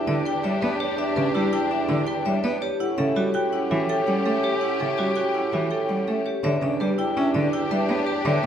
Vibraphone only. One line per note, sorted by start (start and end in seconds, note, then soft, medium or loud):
0.00 0.13 E5 medium
0.07 0.31 D5 medium
0.26 0.49 G5 medium
0.44 0.68 E5 medium
0.62 0.86 D5 medium
0.80 1.04 G4 medium
0.98 1.22 E5 medium
1.17 1.40 D5 medium
1.35 1.58 G4 medium
1.53 1.76 G5 loud
1.71 1.95 E5 medium
1.89 2.13 D5 medium
2.07 2.31 G5 medium
2.26 2.49 E5 medium
2.44 2.67 D5 medium
2.62 2.86 G4 medium
2.80 3.04 F#5 medium
2.98 3.22 E5 medium
3.16 3.40 G4 medium
3.34 3.58 G5 loud
3.53 3.76 F#5 medium
3.71 3.95 E5 medium
3.89 4.13 G5 medium
4.07 4.31 F#5 medium
4.25 4.49 E5 medium
4.44 4.67 G4 medium
4.61 4.85 F#5 medium
4.80 5.04 E5 medium
4.98 5.22 G4 medium
5.16 5.40 G5 medium
5.34 5.58 F#5 medium
5.52 5.76 E5 medium
5.71 5.94 G5 medium
5.89 6.13 F#5 medium
6.08 6.31 E5 medium
6.26 6.49 G4 medium
6.44 6.67 E5 medium
6.63 6.86 D5 medium
6.81 7.04 G4 medium
6.99 7.22 G5 medium
7.17 7.40 E5 medium
7.34 7.58 D5 medium
7.53 7.77 G5 medium
7.71 7.95 E5 medium
7.88 8.13 D5 medium
8.07 8.31 G4 medium
8.25 8.46 E5 medium